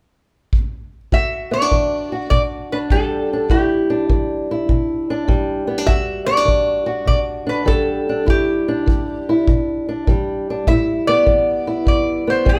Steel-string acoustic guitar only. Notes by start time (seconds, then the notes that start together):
1.12 E2 F#4
1.51 B3
1.62 D4
1.71 E3
2.12 F#4
2.31 B2
2.73 D4
2.92 E3 G3
3.33 D4
3.50 E2 E4
3.90 D4
4.10 E3
4.51 E4
4.69 B2
5.10 D4
5.28 E3 G3
5.67 B3
5.78 D4
5.86 E2 F#4
6.27 B3
6.37 D4
6.45 E3
6.86 F#4
7.05 B2
7.47 D4
7.65 E3 G3
8.09 D4
8.25 E2 E4
8.68 D4
8.86 E3
9.29 E4
9.48 B2
9.89 D4
10.07 E3 G3
10.50 D4
10.68 A2 E4
11.08 B3
11.26 E3
11.67 E4
11.86 E2
12.27 B3
12.45 E3 G3